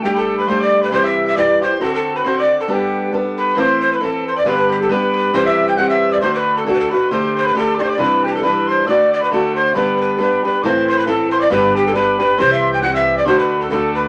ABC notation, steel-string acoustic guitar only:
X:1
M:2/4
L:1/8
Q:"Swing" 1/4=136
K:G
V:1 name="Steel-string acoustic guitar"
[G,A,DG]2 [G,A,DG]2 | [C,E,G,EG]2 [E,G,EG] [G,EG] | [D,CFA]2 [D,CFA]2 | [G,B,DA]2 [G,B,DA]2 |
[A,,E,CEA]2 [E,CEA]2 | [G,,D,G,B,DG]2 [G,B,DG]2 | [C,E,G,CG]2 [E,G,CG]2 | [D,A,DF]2 [D,A,DF] [A,DF] |
[D,A,DG]2 [D,A,DG] [A,DG] | [C,E,G,DE]2 [E,G,DE]2 | [D,A,DF]2 [D,A,DF]2 | [G,,D,G,B,DG]2 [G,B,DG] [G,B,DG] |
[A,,E,CEA]2 [E,CEA]2 | [G,,D,G,B,DG]2 [G,B,DG] [G,B,DG] | [C,E,G,CG]2 [E,G,CG]2 | [D,A,DF]2 [D,A,DF]2 |]